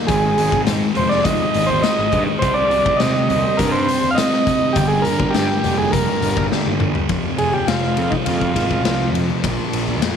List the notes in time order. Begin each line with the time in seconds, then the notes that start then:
Already playing: D#4
0.07 G#1 G#2 D#3 F3 G#3 C4 G#4, kick, closed hi-hat
0.38 G#1, closed hi-hat
0.52 G#1, kick
0.67 G#2, snare, closed hi-hat, low conga
0.94 F1 G#2 D#3 G#3 C5, closed hi-hat, high conga, low conga
1.09 D5, snare
1.23 F1 D#5, kick, closed hi-hat, high conga
1.54 G#1, closed hi-hat
1.67 C5, high conga
1.82 G#2 D#3 G#3 D#5, snare, closed hi-hat
1.99 G#1
2.12 G2, kick, closed hi-hat, low conga
2.39 C2 C3 D#3 G3 C5, kick, closed hi-hat
2.43 D3 C4 G4
2.54 D5
2.71 C2, closed hi-hat
2.86 kick
2.97 D#5, snare, closed hi-hat
3.01 C3, low conga
3.30 C2 C3 G3 C4, closed hi-hat, high conga, low conga
3.57 G2 A#4, kick, closed hi-hat, high conga
3.72 C5
3.88 closed hi-hat
4.03 high conga
4.11 F5
4.15 C3 G3 D#5, snare, closed hi-hat
4.19 C4
4.33 snare
4.47 kick, closed hi-hat, low conga
4.73 G1 G2 D3 G4, kick, closed hi-hat
4.77 G3 A#3 A#4
4.88 G#4
5.02 G1 A#4, closed hi-hat
5.06 high conga
5.20 G1, kick
5.30 G4, closed hi-hat
5.35 G2, snare
5.62 F1 G2 D3 G3, closed hi-hat, high conga, low conga
5.78 G#4
5.92 F1 A#4, kick, closed hi-hat
6.22 G1, closed hi-hat, low conga
6.37 kick, high conga
6.49 G2 D3 G3, snare
6.66 G1, high tom
6.80 G1, mid tom, low conga
6.95 floor tom
7.08 F1 F2 C3 F3 G#3 C4 G#4, kick, ride
7.38 F1 G#4, ride
7.53 G4, high conga
7.67 F1 F4, snare, ride
7.83 snare
7.97 F2, ride, low conga
8.10 D#4, kick
8.25 F2 F4, ride, high conga
8.41 kick
8.54 G#1 F2 C3 F3, kick, ride
8.71 kick
8.84 C2 F2 C3 F3, snare, ride
9.01 high conga
9.14 F2, ride, low conga
9.30 high conga
9.43 A#1 A#2 F3 A#3 D4 A#4, kick, ride
9.73 A#1, ride
9.88 high conga
10.02 F2, snare, ride